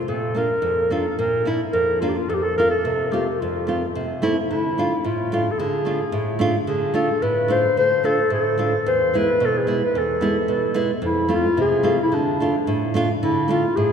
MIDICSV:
0, 0, Header, 1, 3, 480
1, 0, Start_track
1, 0, Tempo, 550964
1, 67, Time_signature, 2, 2, 24, 8
1, 5347, Tempo, 543971
1, 12218, End_track
2, 0, Start_track
2, 0, Title_t, "Clarinet"
2, 0, Program_c, 0, 71
2, 0, Note_on_c, 0, 65, 71
2, 76, Note_on_c, 0, 69, 78
2, 89, Note_off_c, 0, 65, 0
2, 323, Note_on_c, 0, 70, 90
2, 336, Note_off_c, 0, 69, 0
2, 794, Note_on_c, 0, 69, 71
2, 807, Note_off_c, 0, 70, 0
2, 1027, Note_on_c, 0, 70, 76
2, 1040, Note_off_c, 0, 69, 0
2, 1272, Note_off_c, 0, 70, 0
2, 1506, Note_on_c, 0, 70, 89
2, 1746, Note_on_c, 0, 65, 82
2, 1760, Note_off_c, 0, 70, 0
2, 1816, Note_on_c, 0, 67, 58
2, 1829, Note_off_c, 0, 65, 0
2, 1875, Note_on_c, 0, 65, 74
2, 1888, Note_off_c, 0, 67, 0
2, 2003, Note_on_c, 0, 69, 97
2, 2016, Note_off_c, 0, 65, 0
2, 2044, Note_on_c, 0, 67, 81
2, 2057, Note_off_c, 0, 69, 0
2, 2117, Note_on_c, 0, 69, 89
2, 2130, Note_off_c, 0, 67, 0
2, 2238, Note_off_c, 0, 69, 0
2, 2242, Note_on_c, 0, 70, 100
2, 2352, Note_off_c, 0, 70, 0
2, 2357, Note_on_c, 0, 69, 81
2, 2724, Note_on_c, 0, 67, 68
2, 2737, Note_off_c, 0, 69, 0
2, 2961, Note_on_c, 0, 65, 78
2, 2974, Note_off_c, 0, 67, 0
2, 3439, Note_off_c, 0, 65, 0
2, 3911, Note_on_c, 0, 64, 86
2, 4403, Note_on_c, 0, 65, 82
2, 4416, Note_off_c, 0, 64, 0
2, 4803, Note_on_c, 0, 69, 68
2, 4816, Note_off_c, 0, 65, 0
2, 4871, Note_on_c, 0, 68, 94
2, 4884, Note_off_c, 0, 69, 0
2, 5590, Note_off_c, 0, 68, 0
2, 5816, Note_on_c, 0, 68, 89
2, 6067, Note_on_c, 0, 69, 85
2, 6080, Note_off_c, 0, 68, 0
2, 6305, Note_on_c, 0, 71, 86
2, 6318, Note_off_c, 0, 69, 0
2, 6560, Note_on_c, 0, 72, 95
2, 6573, Note_off_c, 0, 71, 0
2, 6794, Note_off_c, 0, 72, 0
2, 6799, Note_on_c, 0, 72, 111
2, 7035, Note_on_c, 0, 69, 97
2, 7048, Note_off_c, 0, 72, 0
2, 7276, Note_off_c, 0, 69, 0
2, 7286, Note_on_c, 0, 69, 84
2, 7729, Note_off_c, 0, 69, 0
2, 7767, Note_on_c, 0, 72, 86
2, 8020, Note_on_c, 0, 71, 97
2, 8033, Note_off_c, 0, 72, 0
2, 8273, Note_on_c, 0, 69, 87
2, 8286, Note_off_c, 0, 71, 0
2, 8385, Note_on_c, 0, 68, 69
2, 8398, Note_off_c, 0, 69, 0
2, 8612, Note_off_c, 0, 68, 0
2, 8621, Note_on_c, 0, 71, 78
2, 8739, Note_on_c, 0, 69, 78
2, 8752, Note_off_c, 0, 71, 0
2, 9449, Note_off_c, 0, 69, 0
2, 9691, Note_on_c, 0, 64, 90
2, 9939, Note_on_c, 0, 65, 102
2, 9953, Note_off_c, 0, 64, 0
2, 10169, Note_off_c, 0, 65, 0
2, 10177, Note_on_c, 0, 68, 102
2, 10503, Note_off_c, 0, 68, 0
2, 10545, Note_on_c, 0, 64, 95
2, 10651, Note_on_c, 0, 62, 78
2, 10664, Note_off_c, 0, 64, 0
2, 11362, Note_off_c, 0, 62, 0
2, 11605, Note_on_c, 0, 64, 85
2, 11856, Note_on_c, 0, 65, 86
2, 11869, Note_off_c, 0, 64, 0
2, 12073, Note_on_c, 0, 68, 95
2, 12086, Note_off_c, 0, 65, 0
2, 12218, Note_off_c, 0, 68, 0
2, 12218, End_track
3, 0, Start_track
3, 0, Title_t, "Nylon-string guitar"
3, 0, Program_c, 1, 24
3, 70, Note_on_c, 1, 46, 63
3, 301, Note_on_c, 1, 58, 54
3, 313, Note_on_c, 1, 62, 55
3, 322, Note_on_c, 1, 65, 59
3, 426, Note_off_c, 1, 58, 0
3, 429, Note_off_c, 1, 46, 0
3, 432, Note_off_c, 1, 62, 0
3, 436, Note_off_c, 1, 65, 0
3, 539, Note_on_c, 1, 41, 71
3, 787, Note_on_c, 1, 58, 57
3, 795, Note_on_c, 1, 62, 61
3, 803, Note_on_c, 1, 65, 63
3, 904, Note_off_c, 1, 41, 0
3, 910, Note_off_c, 1, 58, 0
3, 914, Note_off_c, 1, 62, 0
3, 918, Note_off_c, 1, 65, 0
3, 1033, Note_on_c, 1, 46, 71
3, 1267, Note_on_c, 1, 58, 61
3, 1274, Note_on_c, 1, 62, 58
3, 1282, Note_on_c, 1, 64, 70
3, 1391, Note_off_c, 1, 58, 0
3, 1392, Note_off_c, 1, 46, 0
3, 1395, Note_off_c, 1, 62, 0
3, 1399, Note_off_c, 1, 64, 0
3, 1510, Note_on_c, 1, 41, 74
3, 1758, Note_on_c, 1, 58, 71
3, 1763, Note_on_c, 1, 62, 55
3, 1765, Note_on_c, 1, 65, 71
3, 1871, Note_off_c, 1, 41, 0
3, 1878, Note_off_c, 1, 58, 0
3, 1880, Note_off_c, 1, 62, 0
3, 1881, Note_off_c, 1, 65, 0
3, 1999, Note_on_c, 1, 41, 62
3, 2247, Note_on_c, 1, 57, 53
3, 2253, Note_on_c, 1, 60, 50
3, 2261, Note_on_c, 1, 65, 58
3, 2356, Note_off_c, 1, 41, 0
3, 2362, Note_off_c, 1, 57, 0
3, 2366, Note_off_c, 1, 60, 0
3, 2370, Note_off_c, 1, 65, 0
3, 2482, Note_on_c, 1, 48, 70
3, 2715, Note_on_c, 1, 57, 63
3, 2728, Note_on_c, 1, 60, 57
3, 2732, Note_on_c, 1, 65, 73
3, 2837, Note_off_c, 1, 48, 0
3, 2837, Note_off_c, 1, 57, 0
3, 2843, Note_off_c, 1, 60, 0
3, 2845, Note_off_c, 1, 65, 0
3, 2980, Note_on_c, 1, 41, 64
3, 3196, Note_on_c, 1, 57, 60
3, 3208, Note_on_c, 1, 60, 50
3, 3212, Note_on_c, 1, 65, 59
3, 3317, Note_off_c, 1, 57, 0
3, 3323, Note_off_c, 1, 60, 0
3, 3325, Note_off_c, 1, 65, 0
3, 3327, Note_off_c, 1, 41, 0
3, 3445, Note_on_c, 1, 48, 70
3, 3676, Note_on_c, 1, 57, 78
3, 3682, Note_on_c, 1, 60, 71
3, 3686, Note_on_c, 1, 64, 90
3, 3796, Note_off_c, 1, 57, 0
3, 3798, Note_off_c, 1, 48, 0
3, 3799, Note_off_c, 1, 60, 0
3, 3800, Note_off_c, 1, 64, 0
3, 3926, Note_on_c, 1, 50, 61
3, 4163, Note_on_c, 1, 57, 52
3, 4168, Note_on_c, 1, 62, 59
3, 4175, Note_on_c, 1, 65, 68
3, 4277, Note_off_c, 1, 50, 0
3, 4279, Note_off_c, 1, 57, 0
3, 4281, Note_off_c, 1, 62, 0
3, 4285, Note_off_c, 1, 65, 0
3, 4395, Note_on_c, 1, 45, 71
3, 4635, Note_on_c, 1, 57, 74
3, 4644, Note_on_c, 1, 62, 63
3, 4649, Note_on_c, 1, 65, 73
3, 4750, Note_off_c, 1, 45, 0
3, 4753, Note_off_c, 1, 57, 0
3, 4758, Note_off_c, 1, 62, 0
3, 4761, Note_off_c, 1, 65, 0
3, 4874, Note_on_c, 1, 50, 72
3, 5097, Note_on_c, 1, 57, 61
3, 5107, Note_on_c, 1, 62, 58
3, 5111, Note_on_c, 1, 65, 69
3, 5223, Note_off_c, 1, 57, 0
3, 5228, Note_off_c, 1, 50, 0
3, 5228, Note_off_c, 1, 62, 0
3, 5230, Note_off_c, 1, 65, 0
3, 5335, Note_on_c, 1, 45, 75
3, 5569, Note_on_c, 1, 57, 75
3, 5578, Note_on_c, 1, 62, 67
3, 5588, Note_on_c, 1, 65, 98
3, 5700, Note_off_c, 1, 45, 0
3, 5700, Note_off_c, 1, 57, 0
3, 5705, Note_off_c, 1, 62, 0
3, 5710, Note_off_c, 1, 65, 0
3, 5819, Note_on_c, 1, 50, 66
3, 6052, Note_on_c, 1, 57, 65
3, 6058, Note_on_c, 1, 62, 58
3, 6063, Note_on_c, 1, 65, 68
3, 6183, Note_off_c, 1, 57, 0
3, 6184, Note_off_c, 1, 50, 0
3, 6186, Note_off_c, 1, 62, 0
3, 6187, Note_off_c, 1, 65, 0
3, 6304, Note_on_c, 1, 45, 68
3, 6534, Note_on_c, 1, 57, 67
3, 6546, Note_on_c, 1, 62, 58
3, 6553, Note_on_c, 1, 65, 74
3, 6665, Note_off_c, 1, 57, 0
3, 6667, Note_off_c, 1, 45, 0
3, 6671, Note_off_c, 1, 62, 0
3, 6674, Note_off_c, 1, 65, 0
3, 6789, Note_on_c, 1, 50, 64
3, 7022, Note_on_c, 1, 57, 62
3, 7028, Note_on_c, 1, 62, 49
3, 7033, Note_on_c, 1, 65, 66
3, 7150, Note_off_c, 1, 50, 0
3, 7150, Note_off_c, 1, 57, 0
3, 7151, Note_off_c, 1, 62, 0
3, 7155, Note_off_c, 1, 65, 0
3, 7258, Note_on_c, 1, 45, 64
3, 7499, Note_on_c, 1, 57, 62
3, 7506, Note_on_c, 1, 62, 51
3, 7512, Note_on_c, 1, 65, 66
3, 7625, Note_off_c, 1, 45, 0
3, 7629, Note_off_c, 1, 57, 0
3, 7632, Note_off_c, 1, 62, 0
3, 7635, Note_off_c, 1, 65, 0
3, 7753, Note_on_c, 1, 40, 72
3, 7992, Note_on_c, 1, 56, 60
3, 8000, Note_on_c, 1, 59, 57
3, 8007, Note_on_c, 1, 64, 77
3, 8113, Note_off_c, 1, 40, 0
3, 8116, Note_off_c, 1, 56, 0
3, 8119, Note_off_c, 1, 59, 0
3, 8123, Note_off_c, 1, 64, 0
3, 8229, Note_on_c, 1, 47, 72
3, 8463, Note_on_c, 1, 56, 61
3, 8468, Note_on_c, 1, 59, 56
3, 8474, Note_on_c, 1, 64, 78
3, 8591, Note_off_c, 1, 47, 0
3, 8591, Note_off_c, 1, 56, 0
3, 8594, Note_off_c, 1, 59, 0
3, 8597, Note_off_c, 1, 64, 0
3, 8712, Note_on_c, 1, 40, 62
3, 8939, Note_on_c, 1, 56, 66
3, 8943, Note_on_c, 1, 59, 56
3, 8951, Note_on_c, 1, 64, 75
3, 9070, Note_off_c, 1, 56, 0
3, 9071, Note_off_c, 1, 59, 0
3, 9073, Note_off_c, 1, 40, 0
3, 9075, Note_off_c, 1, 64, 0
3, 9181, Note_on_c, 1, 47, 68
3, 9411, Note_on_c, 1, 56, 88
3, 9416, Note_on_c, 1, 59, 71
3, 9422, Note_on_c, 1, 64, 86
3, 9545, Note_off_c, 1, 56, 0
3, 9547, Note_off_c, 1, 47, 0
3, 9548, Note_off_c, 1, 59, 0
3, 9550, Note_off_c, 1, 64, 0
3, 9653, Note_on_c, 1, 41, 71
3, 9889, Note_on_c, 1, 57, 69
3, 9894, Note_on_c, 1, 60, 53
3, 9899, Note_on_c, 1, 65, 68
3, 10022, Note_off_c, 1, 41, 0
3, 10024, Note_off_c, 1, 57, 0
3, 10027, Note_off_c, 1, 60, 0
3, 10028, Note_off_c, 1, 65, 0
3, 10143, Note_on_c, 1, 48, 76
3, 10372, Note_on_c, 1, 57, 68
3, 10375, Note_on_c, 1, 60, 63
3, 10381, Note_on_c, 1, 65, 69
3, 10505, Note_off_c, 1, 57, 0
3, 10507, Note_off_c, 1, 48, 0
3, 10507, Note_off_c, 1, 60, 0
3, 10509, Note_off_c, 1, 65, 0
3, 10624, Note_on_c, 1, 50, 72
3, 10875, Note_on_c, 1, 57, 62
3, 10883, Note_on_c, 1, 62, 55
3, 10890, Note_on_c, 1, 65, 66
3, 10987, Note_off_c, 1, 50, 0
3, 10996, Note_off_c, 1, 57, 0
3, 11000, Note_off_c, 1, 62, 0
3, 11004, Note_off_c, 1, 65, 0
3, 11114, Note_on_c, 1, 45, 72
3, 11350, Note_on_c, 1, 57, 80
3, 11359, Note_on_c, 1, 62, 74
3, 11371, Note_on_c, 1, 65, 94
3, 11471, Note_off_c, 1, 45, 0
3, 11473, Note_off_c, 1, 57, 0
3, 11477, Note_off_c, 1, 62, 0
3, 11483, Note_off_c, 1, 65, 0
3, 11603, Note_on_c, 1, 50, 76
3, 11825, Note_on_c, 1, 57, 63
3, 11834, Note_on_c, 1, 62, 62
3, 11848, Note_on_c, 1, 65, 76
3, 11949, Note_off_c, 1, 57, 0
3, 11953, Note_off_c, 1, 62, 0
3, 11955, Note_off_c, 1, 50, 0
3, 11960, Note_off_c, 1, 65, 0
3, 12083, Note_on_c, 1, 45, 70
3, 12218, Note_off_c, 1, 45, 0
3, 12218, End_track
0, 0, End_of_file